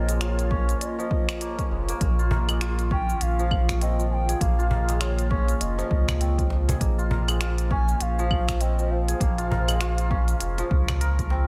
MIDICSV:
0, 0, Header, 1, 7, 480
1, 0, Start_track
1, 0, Tempo, 600000
1, 1606, Time_signature, 4, 2, 24, 8
1, 9176, End_track
2, 0, Start_track
2, 0, Title_t, "Bansuri"
2, 0, Program_c, 0, 73
2, 0, Note_on_c, 0, 75, 91
2, 164, Note_on_c, 0, 73, 96
2, 176, Note_off_c, 0, 75, 0
2, 634, Note_off_c, 0, 73, 0
2, 639, Note_on_c, 0, 75, 89
2, 1331, Note_off_c, 0, 75, 0
2, 2340, Note_on_c, 0, 79, 105
2, 2576, Note_on_c, 0, 77, 110
2, 2588, Note_off_c, 0, 79, 0
2, 3048, Note_off_c, 0, 77, 0
2, 3053, Note_on_c, 0, 75, 93
2, 3273, Note_off_c, 0, 75, 0
2, 3285, Note_on_c, 0, 80, 95
2, 3314, Note_on_c, 0, 79, 103
2, 3322, Note_off_c, 0, 80, 0
2, 3527, Note_on_c, 0, 77, 108
2, 3539, Note_off_c, 0, 79, 0
2, 4006, Note_on_c, 0, 73, 95
2, 4018, Note_off_c, 0, 77, 0
2, 4242, Note_off_c, 0, 73, 0
2, 4247, Note_on_c, 0, 73, 91
2, 4485, Note_on_c, 0, 75, 94
2, 4497, Note_off_c, 0, 73, 0
2, 5206, Note_off_c, 0, 75, 0
2, 6172, Note_on_c, 0, 80, 109
2, 6413, Note_on_c, 0, 77, 105
2, 6425, Note_off_c, 0, 80, 0
2, 6891, Note_on_c, 0, 75, 95
2, 6903, Note_off_c, 0, 77, 0
2, 7132, Note_on_c, 0, 77, 98
2, 7144, Note_off_c, 0, 75, 0
2, 9049, Note_off_c, 0, 77, 0
2, 9176, End_track
3, 0, Start_track
3, 0, Title_t, "Ambient pad"
3, 0, Program_c, 1, 92
3, 0, Note_on_c, 1, 58, 83
3, 0, Note_on_c, 1, 65, 78
3, 0, Note_on_c, 1, 70, 75
3, 0, Note_on_c, 1, 73, 98
3, 1573, Note_off_c, 1, 58, 0
3, 1574, Note_off_c, 1, 73, 0
3, 1576, Note_off_c, 1, 70, 0
3, 1600, Note_on_c, 1, 51, 85
3, 1603, Note_on_c, 1, 68, 93
3, 1606, Note_on_c, 1, 58, 78
3, 5411, Note_off_c, 1, 51, 0
3, 5412, Note_off_c, 1, 68, 0
3, 5452, Note_on_c, 1, 72, 78
3, 9176, Note_off_c, 1, 58, 0
3, 9176, Note_off_c, 1, 65, 0
3, 9176, Note_off_c, 1, 72, 0
3, 9176, End_track
4, 0, Start_track
4, 0, Title_t, "Santur"
4, 0, Program_c, 2, 15
4, 0, Note_on_c, 2, 53, 77
4, 0, Note_on_c, 2, 58, 77
4, 0, Note_on_c, 2, 60, 80
4, 0, Note_on_c, 2, 65, 93
4, 0, Note_on_c, 2, 68, 77
4, 0, Note_on_c, 2, 70, 70
4, 68, Note_on_c, 2, 56, 70
4, 164, Note_off_c, 2, 65, 0
4, 167, Note_on_c, 2, 65, 98
4, 402, Note_on_c, 2, 61, 107
4, 450, Note_off_c, 2, 60, 0
4, 778, Note_off_c, 2, 53, 0
4, 788, Note_on_c, 2, 53, 99
4, 1126, Note_off_c, 2, 58, 0
4, 1129, Note_on_c, 2, 58, 91
4, 1263, Note_off_c, 2, 61, 0
4, 1266, Note_on_c, 2, 61, 73
4, 1360, Note_off_c, 2, 56, 0
4, 1369, Note_on_c, 2, 56, 79
4, 1511, Note_off_c, 2, 58, 0
4, 1514, Note_on_c, 2, 58, 109
4, 1607, Note_off_c, 2, 58, 0
4, 1610, Note_on_c, 2, 58, 77
4, 1646, Note_off_c, 2, 53, 0
4, 1646, Note_off_c, 2, 56, 0
4, 1749, Note_off_c, 2, 65, 0
4, 1752, Note_on_c, 2, 65, 96
4, 1848, Note_off_c, 2, 70, 0
4, 1852, Note_on_c, 2, 70, 75
4, 1994, Note_on_c, 2, 56, 73
4, 2015, Note_off_c, 2, 68, 0
4, 2087, Note_off_c, 2, 65, 0
4, 2091, Note_on_c, 2, 65, 100
4, 2326, Note_off_c, 2, 61, 0
4, 2329, Note_on_c, 2, 61, 113
4, 2712, Note_on_c, 2, 53, 101
4, 3049, Note_on_c, 2, 60, 83
4, 3097, Note_off_c, 2, 61, 0
4, 3180, Note_off_c, 2, 53, 0
4, 3190, Note_on_c, 2, 53, 77
4, 3430, Note_on_c, 2, 68, 79
4, 3526, Note_off_c, 2, 58, 0
4, 3529, Note_on_c, 2, 58, 77
4, 3666, Note_off_c, 2, 65, 0
4, 3669, Note_on_c, 2, 65, 96
4, 3765, Note_off_c, 2, 70, 0
4, 3768, Note_on_c, 2, 70, 71
4, 3899, Note_off_c, 2, 56, 0
4, 3909, Note_on_c, 2, 56, 75
4, 4002, Note_off_c, 2, 65, 0
4, 4005, Note_on_c, 2, 65, 98
4, 4242, Note_on_c, 2, 61, 110
4, 4290, Note_off_c, 2, 60, 0
4, 4615, Note_off_c, 2, 53, 0
4, 4624, Note_on_c, 2, 53, 97
4, 4963, Note_on_c, 2, 60, 84
4, 5011, Note_off_c, 2, 61, 0
4, 5094, Note_off_c, 2, 53, 0
4, 5104, Note_on_c, 2, 53, 74
4, 5342, Note_off_c, 2, 68, 0
4, 5345, Note_on_c, 2, 68, 81
4, 5442, Note_off_c, 2, 58, 0
4, 5445, Note_on_c, 2, 58, 73
4, 5486, Note_off_c, 2, 53, 0
4, 5486, Note_off_c, 2, 56, 0
4, 5583, Note_off_c, 2, 65, 0
4, 5586, Note_on_c, 2, 65, 94
4, 5679, Note_off_c, 2, 70, 0
4, 5682, Note_on_c, 2, 70, 74
4, 5827, Note_on_c, 2, 56, 78
4, 5921, Note_off_c, 2, 65, 0
4, 5924, Note_on_c, 2, 65, 96
4, 6167, Note_on_c, 2, 61, 108
4, 6215, Note_off_c, 2, 60, 0
4, 6550, Note_on_c, 2, 53, 110
4, 6886, Note_on_c, 2, 60, 84
4, 6934, Note_off_c, 2, 61, 0
4, 7020, Note_off_c, 2, 53, 0
4, 7030, Note_on_c, 2, 53, 78
4, 7262, Note_off_c, 2, 68, 0
4, 7266, Note_on_c, 2, 68, 86
4, 7365, Note_off_c, 2, 58, 0
4, 7368, Note_on_c, 2, 58, 78
4, 7502, Note_off_c, 2, 65, 0
4, 7505, Note_on_c, 2, 65, 102
4, 7600, Note_off_c, 2, 70, 0
4, 7603, Note_on_c, 2, 70, 79
4, 7738, Note_off_c, 2, 56, 0
4, 7748, Note_on_c, 2, 56, 82
4, 7841, Note_off_c, 2, 65, 0
4, 7844, Note_on_c, 2, 65, 104
4, 8084, Note_on_c, 2, 61, 105
4, 8132, Note_off_c, 2, 60, 0
4, 8459, Note_off_c, 2, 53, 0
4, 8468, Note_on_c, 2, 53, 107
4, 8802, Note_off_c, 2, 70, 0
4, 8806, Note_on_c, 2, 70, 102
4, 8945, Note_off_c, 2, 65, 0
4, 8949, Note_on_c, 2, 65, 77
4, 9044, Note_on_c, 2, 60, 97
4, 9092, Note_off_c, 2, 61, 0
4, 9176, Note_off_c, 2, 53, 0
4, 9176, Note_off_c, 2, 56, 0
4, 9176, Note_off_c, 2, 58, 0
4, 9176, Note_off_c, 2, 60, 0
4, 9176, Note_off_c, 2, 65, 0
4, 9176, Note_off_c, 2, 68, 0
4, 9176, Note_off_c, 2, 70, 0
4, 9176, End_track
5, 0, Start_track
5, 0, Title_t, "Sub bass"
5, 0, Program_c, 3, 38
5, 0, Note_on_c, 3, 34, 98
5, 593, Note_off_c, 3, 34, 0
5, 1366, Note_on_c, 3, 29, 97
5, 1539, Note_off_c, 3, 29, 0
5, 1606, Note_on_c, 3, 34, 96
5, 2512, Note_off_c, 3, 34, 0
5, 2571, Note_on_c, 3, 34, 82
5, 3475, Note_off_c, 3, 34, 0
5, 3527, Note_on_c, 3, 34, 100
5, 4433, Note_off_c, 3, 34, 0
5, 4486, Note_on_c, 3, 29, 101
5, 4660, Note_off_c, 3, 29, 0
5, 4728, Note_on_c, 3, 37, 101
5, 5394, Note_off_c, 3, 37, 0
5, 5448, Note_on_c, 3, 34, 100
5, 6354, Note_off_c, 3, 34, 0
5, 6405, Note_on_c, 3, 34, 83
5, 7312, Note_off_c, 3, 34, 0
5, 7367, Note_on_c, 3, 34, 101
5, 8273, Note_off_c, 3, 34, 0
5, 8332, Note_on_c, 3, 29, 103
5, 8502, Note_off_c, 3, 29, 0
5, 8566, Note_on_c, 3, 37, 105
5, 9176, Note_off_c, 3, 37, 0
5, 9176, End_track
6, 0, Start_track
6, 0, Title_t, "Cajon"
6, 1846, Note_on_c, 9, 36, 99
6, 1926, Note_off_c, 9, 36, 0
6, 1988, Note_on_c, 9, 38, 60
6, 2068, Note_off_c, 9, 38, 0
6, 2324, Note_on_c, 9, 38, 31
6, 2404, Note_off_c, 9, 38, 0
6, 2949, Note_on_c, 9, 38, 54
6, 3029, Note_off_c, 9, 38, 0
6, 3766, Note_on_c, 9, 36, 87
6, 3846, Note_off_c, 9, 36, 0
6, 3917, Note_on_c, 9, 38, 56
6, 3997, Note_off_c, 9, 38, 0
6, 4245, Note_on_c, 9, 38, 33
6, 4325, Note_off_c, 9, 38, 0
6, 4629, Note_on_c, 9, 38, 61
6, 4709, Note_off_c, 9, 38, 0
6, 4865, Note_on_c, 9, 36, 88
6, 4945, Note_off_c, 9, 36, 0
6, 5202, Note_on_c, 9, 38, 72
6, 5282, Note_off_c, 9, 38, 0
6, 5351, Note_on_c, 9, 38, 71
6, 5352, Note_on_c, 9, 36, 91
6, 5431, Note_off_c, 9, 38, 0
6, 5432, Note_off_c, 9, 36, 0
6, 5687, Note_on_c, 9, 36, 92
6, 5767, Note_off_c, 9, 36, 0
6, 5824, Note_on_c, 9, 38, 66
6, 5904, Note_off_c, 9, 38, 0
6, 6164, Note_on_c, 9, 38, 35
6, 6244, Note_off_c, 9, 38, 0
6, 6783, Note_on_c, 9, 38, 54
6, 6863, Note_off_c, 9, 38, 0
6, 7612, Note_on_c, 9, 36, 90
6, 7692, Note_off_c, 9, 36, 0
6, 7745, Note_on_c, 9, 38, 72
6, 7825, Note_off_c, 9, 38, 0
6, 8091, Note_on_c, 9, 38, 36
6, 8171, Note_off_c, 9, 38, 0
6, 8464, Note_on_c, 9, 38, 65
6, 8544, Note_off_c, 9, 38, 0
6, 8714, Note_on_c, 9, 36, 82
6, 8794, Note_off_c, 9, 36, 0
6, 9042, Note_on_c, 9, 38, 71
6, 9122, Note_off_c, 9, 38, 0
6, 9176, End_track
7, 0, Start_track
7, 0, Title_t, "Drums"
7, 68, Note_on_c, 9, 42, 30
7, 73, Note_on_c, 9, 69, 74
7, 148, Note_off_c, 9, 42, 0
7, 153, Note_off_c, 9, 69, 0
7, 167, Note_on_c, 9, 26, 76
7, 167, Note_on_c, 9, 42, 65
7, 171, Note_on_c, 9, 69, 57
7, 247, Note_off_c, 9, 26, 0
7, 247, Note_off_c, 9, 42, 0
7, 251, Note_off_c, 9, 69, 0
7, 310, Note_on_c, 9, 42, 30
7, 314, Note_on_c, 9, 69, 36
7, 390, Note_off_c, 9, 42, 0
7, 394, Note_off_c, 9, 69, 0
7, 407, Note_on_c, 9, 36, 104
7, 487, Note_off_c, 9, 36, 0
7, 551, Note_on_c, 9, 42, 32
7, 555, Note_on_c, 9, 69, 68
7, 631, Note_off_c, 9, 42, 0
7, 635, Note_off_c, 9, 69, 0
7, 650, Note_on_c, 9, 42, 70
7, 654, Note_on_c, 9, 69, 65
7, 730, Note_off_c, 9, 42, 0
7, 734, Note_off_c, 9, 69, 0
7, 797, Note_on_c, 9, 69, 34
7, 877, Note_off_c, 9, 69, 0
7, 887, Note_on_c, 9, 36, 100
7, 967, Note_off_c, 9, 36, 0
7, 1029, Note_on_c, 9, 26, 83
7, 1029, Note_on_c, 9, 42, 47
7, 1029, Note_on_c, 9, 75, 61
7, 1034, Note_on_c, 9, 69, 72
7, 1109, Note_off_c, 9, 26, 0
7, 1109, Note_off_c, 9, 42, 0
7, 1109, Note_off_c, 9, 75, 0
7, 1114, Note_off_c, 9, 69, 0
7, 1128, Note_on_c, 9, 42, 66
7, 1132, Note_on_c, 9, 69, 59
7, 1208, Note_off_c, 9, 42, 0
7, 1212, Note_off_c, 9, 69, 0
7, 1269, Note_on_c, 9, 36, 65
7, 1269, Note_on_c, 9, 42, 30
7, 1274, Note_on_c, 9, 69, 34
7, 1349, Note_off_c, 9, 36, 0
7, 1349, Note_off_c, 9, 42, 0
7, 1354, Note_off_c, 9, 69, 0
7, 1509, Note_on_c, 9, 42, 44
7, 1513, Note_on_c, 9, 69, 71
7, 1589, Note_off_c, 9, 42, 0
7, 1593, Note_off_c, 9, 69, 0
7, 1607, Note_on_c, 9, 36, 120
7, 1608, Note_on_c, 9, 42, 66
7, 1612, Note_on_c, 9, 69, 56
7, 1687, Note_off_c, 9, 36, 0
7, 1688, Note_off_c, 9, 42, 0
7, 1692, Note_off_c, 9, 69, 0
7, 1753, Note_on_c, 9, 69, 34
7, 1833, Note_off_c, 9, 69, 0
7, 1989, Note_on_c, 9, 42, 29
7, 1989, Note_on_c, 9, 75, 61
7, 1994, Note_on_c, 9, 69, 70
7, 2069, Note_off_c, 9, 42, 0
7, 2069, Note_off_c, 9, 75, 0
7, 2074, Note_off_c, 9, 69, 0
7, 2089, Note_on_c, 9, 26, 74
7, 2089, Note_on_c, 9, 42, 68
7, 2093, Note_on_c, 9, 69, 55
7, 2169, Note_off_c, 9, 26, 0
7, 2169, Note_off_c, 9, 42, 0
7, 2173, Note_off_c, 9, 69, 0
7, 2230, Note_on_c, 9, 42, 31
7, 2234, Note_on_c, 9, 69, 36
7, 2310, Note_off_c, 9, 42, 0
7, 2314, Note_off_c, 9, 69, 0
7, 2328, Note_on_c, 9, 36, 112
7, 2408, Note_off_c, 9, 36, 0
7, 2475, Note_on_c, 9, 69, 71
7, 2555, Note_off_c, 9, 69, 0
7, 2568, Note_on_c, 9, 42, 71
7, 2572, Note_on_c, 9, 69, 62
7, 2648, Note_off_c, 9, 42, 0
7, 2652, Note_off_c, 9, 69, 0
7, 2715, Note_on_c, 9, 69, 33
7, 2795, Note_off_c, 9, 69, 0
7, 2808, Note_on_c, 9, 36, 107
7, 2810, Note_on_c, 9, 75, 64
7, 2888, Note_off_c, 9, 36, 0
7, 2890, Note_off_c, 9, 75, 0
7, 2950, Note_on_c, 9, 36, 62
7, 2953, Note_on_c, 9, 26, 78
7, 2953, Note_on_c, 9, 42, 47
7, 2958, Note_on_c, 9, 69, 70
7, 3030, Note_off_c, 9, 36, 0
7, 3033, Note_off_c, 9, 26, 0
7, 3033, Note_off_c, 9, 42, 0
7, 3038, Note_off_c, 9, 69, 0
7, 3051, Note_on_c, 9, 42, 61
7, 3056, Note_on_c, 9, 69, 56
7, 3131, Note_off_c, 9, 42, 0
7, 3136, Note_off_c, 9, 69, 0
7, 3197, Note_on_c, 9, 69, 33
7, 3277, Note_off_c, 9, 69, 0
7, 3431, Note_on_c, 9, 42, 45
7, 3436, Note_on_c, 9, 69, 69
7, 3511, Note_off_c, 9, 42, 0
7, 3516, Note_off_c, 9, 69, 0
7, 3527, Note_on_c, 9, 36, 113
7, 3530, Note_on_c, 9, 42, 72
7, 3534, Note_on_c, 9, 69, 54
7, 3607, Note_off_c, 9, 36, 0
7, 3610, Note_off_c, 9, 42, 0
7, 3614, Note_off_c, 9, 69, 0
7, 3676, Note_on_c, 9, 69, 34
7, 3756, Note_off_c, 9, 69, 0
7, 3909, Note_on_c, 9, 42, 32
7, 3914, Note_on_c, 9, 69, 65
7, 3989, Note_off_c, 9, 42, 0
7, 3994, Note_off_c, 9, 69, 0
7, 4006, Note_on_c, 9, 26, 79
7, 4006, Note_on_c, 9, 42, 66
7, 4010, Note_on_c, 9, 69, 52
7, 4086, Note_off_c, 9, 26, 0
7, 4086, Note_off_c, 9, 42, 0
7, 4090, Note_off_c, 9, 69, 0
7, 4149, Note_on_c, 9, 42, 32
7, 4153, Note_on_c, 9, 69, 35
7, 4229, Note_off_c, 9, 42, 0
7, 4233, Note_off_c, 9, 69, 0
7, 4247, Note_on_c, 9, 36, 103
7, 4327, Note_off_c, 9, 36, 0
7, 4388, Note_on_c, 9, 42, 33
7, 4392, Note_on_c, 9, 69, 65
7, 4468, Note_off_c, 9, 42, 0
7, 4472, Note_off_c, 9, 69, 0
7, 4487, Note_on_c, 9, 42, 73
7, 4492, Note_on_c, 9, 69, 59
7, 4567, Note_off_c, 9, 42, 0
7, 4572, Note_off_c, 9, 69, 0
7, 4634, Note_on_c, 9, 69, 31
7, 4714, Note_off_c, 9, 69, 0
7, 4727, Note_on_c, 9, 36, 93
7, 4807, Note_off_c, 9, 36, 0
7, 4869, Note_on_c, 9, 26, 79
7, 4869, Note_on_c, 9, 42, 47
7, 4869, Note_on_c, 9, 75, 63
7, 4873, Note_on_c, 9, 69, 63
7, 4949, Note_off_c, 9, 26, 0
7, 4949, Note_off_c, 9, 42, 0
7, 4949, Note_off_c, 9, 75, 0
7, 4953, Note_off_c, 9, 69, 0
7, 4966, Note_on_c, 9, 42, 66
7, 4971, Note_on_c, 9, 69, 56
7, 5046, Note_off_c, 9, 42, 0
7, 5051, Note_off_c, 9, 69, 0
7, 5108, Note_on_c, 9, 36, 60
7, 5110, Note_on_c, 9, 42, 29
7, 5115, Note_on_c, 9, 69, 34
7, 5188, Note_off_c, 9, 36, 0
7, 5190, Note_off_c, 9, 42, 0
7, 5195, Note_off_c, 9, 69, 0
7, 5350, Note_on_c, 9, 42, 45
7, 5354, Note_on_c, 9, 69, 70
7, 5430, Note_off_c, 9, 42, 0
7, 5434, Note_off_c, 9, 69, 0
7, 5447, Note_on_c, 9, 36, 106
7, 5448, Note_on_c, 9, 42, 74
7, 5452, Note_on_c, 9, 69, 57
7, 5527, Note_off_c, 9, 36, 0
7, 5528, Note_off_c, 9, 42, 0
7, 5532, Note_off_c, 9, 69, 0
7, 5592, Note_on_c, 9, 69, 33
7, 5672, Note_off_c, 9, 69, 0
7, 5828, Note_on_c, 9, 42, 32
7, 5828, Note_on_c, 9, 75, 63
7, 5832, Note_on_c, 9, 69, 65
7, 5908, Note_off_c, 9, 42, 0
7, 5908, Note_off_c, 9, 75, 0
7, 5912, Note_off_c, 9, 69, 0
7, 5925, Note_on_c, 9, 26, 78
7, 5925, Note_on_c, 9, 42, 70
7, 5929, Note_on_c, 9, 69, 53
7, 6005, Note_off_c, 9, 26, 0
7, 6005, Note_off_c, 9, 42, 0
7, 6009, Note_off_c, 9, 69, 0
7, 6067, Note_on_c, 9, 42, 33
7, 6071, Note_on_c, 9, 69, 34
7, 6147, Note_off_c, 9, 42, 0
7, 6151, Note_off_c, 9, 69, 0
7, 6166, Note_on_c, 9, 36, 108
7, 6246, Note_off_c, 9, 36, 0
7, 6308, Note_on_c, 9, 69, 64
7, 6388, Note_off_c, 9, 69, 0
7, 6404, Note_on_c, 9, 42, 75
7, 6408, Note_on_c, 9, 69, 59
7, 6484, Note_off_c, 9, 42, 0
7, 6488, Note_off_c, 9, 69, 0
7, 6552, Note_on_c, 9, 69, 32
7, 6632, Note_off_c, 9, 69, 0
7, 6646, Note_on_c, 9, 36, 100
7, 6646, Note_on_c, 9, 75, 66
7, 6726, Note_off_c, 9, 36, 0
7, 6726, Note_off_c, 9, 75, 0
7, 6787, Note_on_c, 9, 36, 56
7, 6789, Note_on_c, 9, 26, 75
7, 6789, Note_on_c, 9, 42, 48
7, 6793, Note_on_c, 9, 69, 67
7, 6867, Note_off_c, 9, 36, 0
7, 6869, Note_off_c, 9, 26, 0
7, 6869, Note_off_c, 9, 42, 0
7, 6873, Note_off_c, 9, 69, 0
7, 6885, Note_on_c, 9, 42, 68
7, 6889, Note_on_c, 9, 69, 56
7, 6965, Note_off_c, 9, 42, 0
7, 6969, Note_off_c, 9, 69, 0
7, 7032, Note_on_c, 9, 69, 31
7, 7112, Note_off_c, 9, 69, 0
7, 7268, Note_on_c, 9, 42, 47
7, 7273, Note_on_c, 9, 69, 65
7, 7348, Note_off_c, 9, 42, 0
7, 7353, Note_off_c, 9, 69, 0
7, 7365, Note_on_c, 9, 36, 114
7, 7368, Note_on_c, 9, 42, 75
7, 7372, Note_on_c, 9, 69, 58
7, 7445, Note_off_c, 9, 36, 0
7, 7448, Note_off_c, 9, 42, 0
7, 7452, Note_off_c, 9, 69, 0
7, 7508, Note_on_c, 9, 42, 34
7, 7512, Note_on_c, 9, 69, 34
7, 7588, Note_off_c, 9, 42, 0
7, 7592, Note_off_c, 9, 69, 0
7, 7748, Note_on_c, 9, 42, 33
7, 7748, Note_on_c, 9, 75, 62
7, 7753, Note_on_c, 9, 69, 65
7, 7828, Note_off_c, 9, 42, 0
7, 7828, Note_off_c, 9, 75, 0
7, 7833, Note_off_c, 9, 69, 0
7, 7845, Note_on_c, 9, 26, 76
7, 7845, Note_on_c, 9, 42, 75
7, 7849, Note_on_c, 9, 69, 53
7, 7925, Note_off_c, 9, 26, 0
7, 7925, Note_off_c, 9, 42, 0
7, 7929, Note_off_c, 9, 69, 0
7, 7985, Note_on_c, 9, 42, 36
7, 7990, Note_on_c, 9, 69, 33
7, 8065, Note_off_c, 9, 42, 0
7, 8070, Note_off_c, 9, 69, 0
7, 8086, Note_on_c, 9, 36, 104
7, 8166, Note_off_c, 9, 36, 0
7, 8224, Note_on_c, 9, 42, 35
7, 8228, Note_on_c, 9, 69, 71
7, 8304, Note_off_c, 9, 42, 0
7, 8308, Note_off_c, 9, 69, 0
7, 8324, Note_on_c, 9, 42, 76
7, 8328, Note_on_c, 9, 69, 62
7, 8404, Note_off_c, 9, 42, 0
7, 8408, Note_off_c, 9, 69, 0
7, 8467, Note_on_c, 9, 42, 32
7, 8471, Note_on_c, 9, 69, 34
7, 8547, Note_off_c, 9, 42, 0
7, 8551, Note_off_c, 9, 69, 0
7, 8568, Note_on_c, 9, 36, 105
7, 8648, Note_off_c, 9, 36, 0
7, 8708, Note_on_c, 9, 26, 82
7, 8708, Note_on_c, 9, 42, 49
7, 8708, Note_on_c, 9, 75, 65
7, 8712, Note_on_c, 9, 69, 69
7, 8788, Note_off_c, 9, 26, 0
7, 8788, Note_off_c, 9, 42, 0
7, 8788, Note_off_c, 9, 75, 0
7, 8792, Note_off_c, 9, 69, 0
7, 8809, Note_on_c, 9, 42, 75
7, 8813, Note_on_c, 9, 69, 59
7, 8889, Note_off_c, 9, 42, 0
7, 8893, Note_off_c, 9, 69, 0
7, 8951, Note_on_c, 9, 36, 60
7, 8952, Note_on_c, 9, 42, 31
7, 8956, Note_on_c, 9, 69, 33
7, 9031, Note_off_c, 9, 36, 0
7, 9032, Note_off_c, 9, 42, 0
7, 9036, Note_off_c, 9, 69, 0
7, 9176, End_track
0, 0, End_of_file